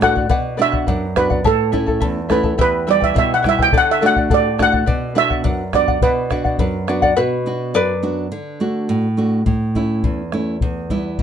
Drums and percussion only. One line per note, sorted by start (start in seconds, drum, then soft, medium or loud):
0.02 bombo rim medium
0.02 bombo low soft
0.16 bombo low medium
0.30 bombo low medium
0.73 bombo low medium
0.87 bombo low medium
1.16 bombo rim medium
1.16 bombo low soft
1.31 bombo low medium
1.44 bombo low medium
1.73 bombo low soft
1.88 bombo low medium
2.01 bombo low medium
2.30 bombo rim soft
2.30 bombo low soft
2.44 bombo low medium
2.59 bombo low medium
3.02 bombo low medium
3.16 bombo low medium
3.44 bombo rim medium
3.44 bombo low soft
3.59 bombo low medium
3.73 bombo low medium
4.16 bombo low medium
4.30 bombo low medium
4.59 bombo rim medium
4.59 bombo low medium
4.73 bombo low medium
4.88 bombo low medium
5.30 bombo low medium
5.45 bombo low medium
5.73 bombo rim medium
5.73 bombo low soft
5.88 bombo low medium
6.02 bombo low medium
6.31 bombo rim soft
6.31 bombo low soft
6.45 bombo low medium
6.59 bombo low medium
6.88 bombo rim soft
7.02 bombo low medium
9.46 bombo low medium
9.75 bombo low soft
10.04 bombo low medium
10.32 bombo rim soft
10.61 bombo low medium
10.90 bombo low soft
11.18 bombo low medium